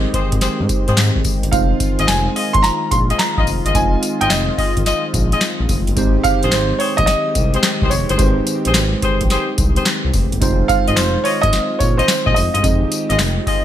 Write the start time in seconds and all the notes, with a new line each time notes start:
Already playing: D#3 G#3 C4 D#4 G4 A#4 C5 D#5
0.14 G4 G#4 C5, kick, closed hi-hat
0.32 G#1, kick, closed hi-hat
0.41 G4 G#4 C5, snare, closed hi-hat, tambourine
0.60 G#2
0.69 kick, closed hi-hat, tambourine
0.88 G#2 G4 G#4 C5, closed hi-hat
0.97 G#2, snare, clap, closed hi-hat, tambourine
1.16 G#1
1.25 kick, open hi-hat, tambourine
1.43 G1, closed hi-hat
1.51 F1 G#3 C4 D#4 F4 C5 F5, kick, closed hi-hat, tambourine
1.80 kick, closed hi-hat, tambourine
1.98 G#1 F4 G#4 D#5, closed hi-hat
2.07 F1 G#5, snare, clap, closed hi-hat, tambourine
2.36 F4 G#4 D#5, open hi-hat
2.53 G#1 C6, kick, closed hi-hat
2.63 A#5, snare, closed hi-hat, tambourine
2.91 A#1 C6, kick, closed hi-hat, tambourine
3.09 F4 G#4 D#5, closed hi-hat
3.18 A#5, snare, clap, closed hi-hat, tambourine
3.37 A#1 F4 G#4 D#5, kick
3.47 F1, open hi-hat, tambourine
3.65 G1 F4 G#4 D#5, closed hi-hat
3.74 F1 G#3 C4 D#4 F4 D#5 G#5, kick, closed hi-hat, tambourine
4.03 closed hi-hat, tambourine
4.21 G#1 F4 G#4 D#5 G5, closed hi-hat
4.30 F1 D#5, snare, clap, closed hi-hat, tambourine
4.58 F4 G#4 D#5, kick, open hi-hat
4.77 G#1, kick, closed hi-hat
4.86 F4 G#4 D#5, snare, closed hi-hat, tambourine
5.14 A#1, kick, closed hi-hat, tambourine
5.32 F4 G#4 D#5, closed hi-hat
5.41 snare, clap, closed hi-hat, tambourine
5.60 A#1
5.69 F1, kick, open hi-hat, tambourine
5.87 G1, closed hi-hat
5.96 G#1 D#3 G#3 C4 D#4 G4 C5, kick, closed hi-hat, tambourine
6.23 F5, kick, closed hi-hat, tambourine
6.43 A#1 G4 G#4 C5, closed hi-hat
6.51 G#1 C5, snare, clap, closed hi-hat, tambourine
6.79 G4 G#4 C5 C#5, open hi-hat
6.97 A#1 D#5, kick, closed hi-hat
7.06 D#5, snare, closed hi-hat, tambourine
7.35 C2, kick, closed hi-hat, tambourine
7.54 G4 G#4 C5, closed hi-hat
7.63 snare, clap, closed hi-hat, tambourine
7.82 C2 G4 G#4 C5, kick
7.90 F1 C#5, open hi-hat, tambourine
8.09 G1 G4 G#4 C5, closed hi-hat
8.18 G#1 G#3 C4 D#4 G4 B4 C5, kick, closed hi-hat, tambourine
8.27 C5
8.47 closed hi-hat, tambourine
8.65 A#1 G4 G#4 C5, closed hi-hat
8.74 G#1, snare, clap, closed hi-hat, tambourine
9.02 G4 G#4 C5, kick, closed hi-hat
9.21 A#1, kick, closed hi-hat
9.30 G4 G#4 C5, snare, closed hi-hat, tambourine
9.58 C2, kick, closed hi-hat, tambourine
9.76 G4 G#4 C5, closed hi-hat
9.86 snare, clap, closed hi-hat, tambourine
10.05 C2
10.14 F1, kick, open hi-hat, tambourine
10.32 G1, closed hi-hat
10.40 F1 D#3 G#3 C4 D#4 F4 C5, kick, closed hi-hat, tambourine
10.68 F5, kick, closed hi-hat, tambourine
10.87 G#1 F4 G#4 D#5, closed hi-hat
10.96 F1 C5, snare, clap, closed hi-hat, tambourine
11.24 F4 G#4 C#5 D#5, open hi-hat
11.41 G#1 D#5, kick, closed hi-hat
11.53 snare, closed hi-hat, tambourine
11.79 A#1 C#5, kick, closed hi-hat, tambourine
11.97 F4 G#4 C5 D#5, closed hi-hat
12.08 snare, clap, closed hi-hat, tambourine
12.26 A#1 F4 G#4 D#5, kick
12.34 F1 D#5, open hi-hat, tambourine
12.54 G1 F4 G#4 D#5, closed hi-hat
12.63 F1 G#3 C4 D#4 F4 G4 D#5, kick, closed hi-hat, tambourine
12.92 closed hi-hat, tambourine
13.09 G#1 F4 G#4 D#5, closed hi-hat
13.19 F1, snare, clap, closed hi-hat, tambourine
13.47 F4 G#4 D#5, kick, open hi-hat